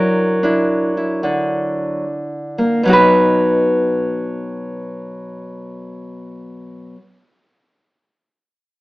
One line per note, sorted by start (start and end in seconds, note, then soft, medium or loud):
0.00 2.04 F#3 medium
0.00 0.42 D4 medium
0.00 0.43 E4 medium
0.00 2.83 A#4 loud
0.43 2.81 D4 medium
0.43 0.96 E4 soft
0.97 2.81 E4 soft
1.23 2.81 D3 medium
2.58 2.84 A#3 medium
2.83 6.95 B2 medium
2.83 6.97 F#3 medium
2.87 6.99 D#4 medium
2.87 7.01 F#4 medium
2.93 7.01 B4 medium